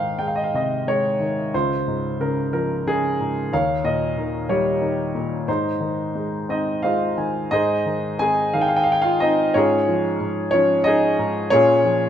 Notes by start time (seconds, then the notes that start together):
Already playing: G#2 D#3 C5 F5 G5
0.18 G#3 G5
0.27 F5
0.36 D#5
0.44 F5
0.54 C3 D#5
0.87 G#3 C#5
1.20 D#3
1.54 C#2 F4 C5
1.88 G#2
2.20 C#3 A#4
2.53 F3 A#4
2.87 C#3 G#4
3.20 G#2
3.53 D#2 C#5 F5
3.84 A#2 D#5
4.17 D#3
4.49 G3 G4 C#5
4.81 D#3
5.14 A#2
5.48 G#2 D#4 C5
5.80 D#3
6.15 G#3
6.49 C4 D#4 D#5
6.83 G#3 F4 C5 D#5 F5
7.17 D#3 G#5
7.51 G#2 D#4 G#4 C5 D#5
7.86 D#3
8.19 C4 G#4 G#5
8.53 D#3 F5
8.61 G5
8.68 F5
8.76 G5
8.84 F5
8.92 G5
9.02 F4 F5
9.20 C4 D#4 D#5
9.54 G#2 C#4 F4 G#4 C#5
9.88 F3
10.20 G#2
10.51 F3 C#4 C#5
10.84 D#4 G#4 D#5
11.19 G#2
11.50 A#2 C#4 F4 G#4 C#5
11.84 F3